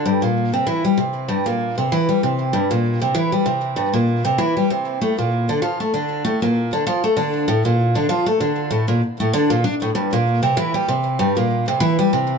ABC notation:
X:1
M:4/4
L:1/16
Q:"Swing 16ths" 1/4=97
K:Cmix
V:1 name="Twelve-string acoustic guitar" clef=bass
G,, B,,2 C, E, G, C,2 G,, B,,2 C, E, G, C,2 | G,, B,,2 C, E, G, C,2 G,, B,,2 C, E, G, C,2 | A,, B,,2 D, F, A, D,2 A,, B,,2 D, F, A, D,2 | A,, B,,2 D, F, A, D,2 A,, B,, z A,, D, B,, D A,, |
G,, B,,2 C, E, G, C,2 G,, B,,2 C, E, G, C,2 |]